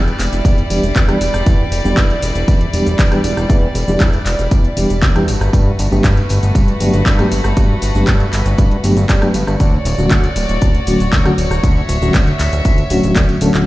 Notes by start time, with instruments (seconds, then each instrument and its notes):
Already playing: analog synth bass E2, violin section G3 E4 D5
0.08 closed hi-hat, tambourine
0.19 analog synth bass E1, clap, open hi-hat, tambourine, shaker
0.33 analog synth bass E1, closed hi-hat, tambourine, shaker
0.45 analog synth bass E2, kick, closed hi-hat, tambourine, shaker
0.58 closed hi-hat
0.70 analog synth bass E1, reed electric piano E3 G3 B3 D4 G4, open hi-hat, tambourine, shaker
0.83 analog synth bass E1, closed hi-hat, tambourine, shaker
0.96 analog synth bass E2, kick, clap, closed hi-hat, tambourine, shaker
1.08 reed electric piano E3 G3 B3 D4 G4, cross-stick, closed hi-hat, tambourine
1.21 analog synth bass E1, open hi-hat, tambourine, shaker
1.34 analog synth bass E1, cross-stick, shaker
1.46 analog synth bass E2, kick, closed hi-hat, tambourine, shaker
1.72 analog synth bass E1, open hi-hat, tambourine, shaker
1.85 analog synth bass E1, reed electric piano E3 G3 B3 D4 G4, tambourine, shaker
1.97 analog synth bass E2, kick, clap, closed hi-hat, tambourine, shaker
2.10 closed hi-hat, tambourine
2.22 analog synth bass E1, open hi-hat, tambourine, shaker
2.35 analog synth bass E1, closed hi-hat, tambourine, shaker
2.48 analog synth bass E2, kick, closed hi-hat, tambourine, shaker
2.61 closed hi-hat
2.73 analog synth bass E1, reed electric piano E3 G3 B3 D4 G4, open hi-hat, tambourine, shaker
2.86 analog synth bass E1, closed hi-hat, tambourine, shaker
2.99 analog synth bass E2, kick, clap, closed hi-hat, tambourine, shaker
3.12 reed electric piano E3 G3 B3 D4 G4, cross-stick, closed hi-hat, tambourine
3.24 analog synth bass E1, open hi-hat, tambourine, shaker
3.37 analog synth bass E1, cross-stick, tambourine, shaker
3.50 analog synth bass E2, kick, closed hi-hat, tambourine, shaker
3.75 analog synth bass E1, open hi-hat, tambourine, shaker
3.88 analog synth bass E1, reed electric piano E3 G3 B3 D4 G4, tambourine, shaker
4.00 analog synth bass E2, kick, clap, closed hi-hat, tambourine, shaker
4.13 closed hi-hat, tambourine
4.26 analog synth bass E1, clap, open hi-hat, tambourine, shaker
4.39 analog synth bass E1, closed hi-hat, tambourine, shaker
4.51 analog synth bass E2, kick, closed hi-hat, tambourine, shaker
4.64 closed hi-hat
4.77 analog synth bass E1, reed electric piano E3 G3 B3 D4 G4, open hi-hat, tambourine, shaker
4.90 analog synth bass E1, closed hi-hat, tambourine, shaker
5.02 analog synth bass E2, kick, clap, closed hi-hat, tambourine, shaker
5.15 reed electric piano E3 G3 B3 D4 G4, cross-stick, closed hi-hat, tambourine
5.27 analog synth bass G1, violin section A3 F#4 B4, open hi-hat, tambourine, shaker
5.41 analog synth bass G1, cross-stick, tambourine, shaker
5.53 analog synth bass G2, kick, closed hi-hat, tambourine, shaker
5.79 analog synth bass G1, open hi-hat, tambourine, shaker
5.91 analog synth bass G1, reed electric piano F#3 A3 B3 D4 G4, tambourine, shaker
6.04 analog synth bass G2, kick, clap, closed hi-hat, tambourine, shaker
6.17 closed hi-hat, tambourine
6.29 analog synth bass G1, open hi-hat, tambourine, shaker
6.43 analog synth bass G1, closed hi-hat, tambourine, shaker
6.55 analog synth bass G2, kick, closed hi-hat, tambourine, shaker
6.68 closed hi-hat
6.80 analog synth bass G1, reed electric piano F#3 A3 B3 D4 G4, open hi-hat, tambourine, shaker
6.93 analog synth bass G1, closed hi-hat, tambourine, shaker
7.06 analog synth bass G2, kick, clap, closed hi-hat, tambourine, shaker
7.19 reed electric piano F#3 A3 B3 D4 G4, cross-stick, closed hi-hat, tambourine
7.32 analog synth bass G1, open hi-hat, tambourine, shaker
7.44 analog synth bass G1, cross-stick, tambourine, shaker
7.57 analog synth bass G2, kick, closed hi-hat, tambourine, shaker
7.82 analog synth bass G1, open hi-hat, tambourine, shaker
7.95 analog synth bass G1, reed electric piano F#3 A3 B3 D4 G4, shaker
8.07 analog synth bass G2, kick, clap, closed hi-hat, tambourine, shaker
8.20 closed hi-hat, tambourine
8.33 analog synth bass G1, clap, open hi-hat, tambourine, shaker
8.46 analog synth bass G1, closed hi-hat, tambourine, shaker
8.58 analog synth bass G2, kick, closed hi-hat, tambourine, shaker
8.71 closed hi-hat
8.84 analog synth bass G1, reed electric piano F#3 A3 B3 D4 G4, open hi-hat, tambourine, shaker
8.97 analog synth bass G1, closed hi-hat, tambourine, shaker
9.09 analog synth bass G2, kick, clap, closed hi-hat, tambourine, shaker
9.22 reed electric piano F#3 A3 B3 D4 G4, cross-stick, closed hi-hat, tambourine
9.34 analog synth bass G1, open hi-hat, tambourine, shaker
9.47 analog synth bass G1, cross-stick, tambourine, shaker
9.60 analog synth bass D2, violin section F#4 C#5 D5, kick, closed hi-hat, tambourine, shaker
9.85 analog synth bass D1, open hi-hat, tambourine, shaker
9.98 analog synth bass D1, reed electric piano D3 F#3 A3 C#4 F#4, tambourine, shaker
10.11 analog synth bass D2, kick, clap, closed hi-hat, tambourine, shaker
10.23 closed hi-hat, tambourine
10.36 analog synth bass D1, open hi-hat, tambourine, shaker
10.49 analog synth bass D1, closed hi-hat, tambourine, shaker
10.62 analog synth bass D2, kick, closed hi-hat, tambourine, shaker
10.75 closed hi-hat
10.87 analog synth bass D1, reed electric piano D3 F#3 A3 C#4 F#4, open hi-hat, tambourine, shaker
11.00 analog synth bass D1, closed hi-hat, tambourine, shaker
11.13 analog synth bass D2, kick, clap, closed hi-hat, tambourine, shaker
11.25 reed electric piano D3 F#3 A3 C#4 F#4, cross-stick, closed hi-hat, tambourine
11.38 analog synth bass D1, open hi-hat, tambourine, shaker
11.51 analog synth bass D1, cross-stick, tambourine, shaker
11.63 analog synth bass D2, violin section E5, kick, closed hi-hat, tambourine, shaker
11.77 tambourine
11.89 analog synth bass D1, open hi-hat, tambourine, shaker
12.01 analog synth bass D1, reed electric piano D3 F#3 A3 C#4 F#4, closed hi-hat, tambourine, shaker
12.14 analog synth bass D2, kick, clap, closed hi-hat, tambourine, shaker
12.27 closed hi-hat, tambourine
12.40 analog synth bass D1, clap, open hi-hat, tambourine, shaker
12.53 analog synth bass D1, closed hi-hat, tambourine, shaker
12.65 analog synth bass D2, kick, closed hi-hat, tambourine, shaker
12.78 closed hi-hat, tambourine
12.90 analog synth bass D1, reed electric piano D3 F#3 A3 C#4 F#4, open hi-hat, tambourine, shaker
13.03 analog synth bass D1, closed hi-hat, tambourine, shaker
13.16 analog synth bass D2, kick, clap, closed hi-hat, tambourine, shaker
13.29 closed hi-hat, tambourine
13.41 analog synth bass D1, reed electric piano D3 F#3 A3 C#4 A4, open hi-hat, tambourine, shaker
13.54 analog synth bass D1, reed electric piano D3 F#3 A3 F#4, clap, closed hi-hat, shaker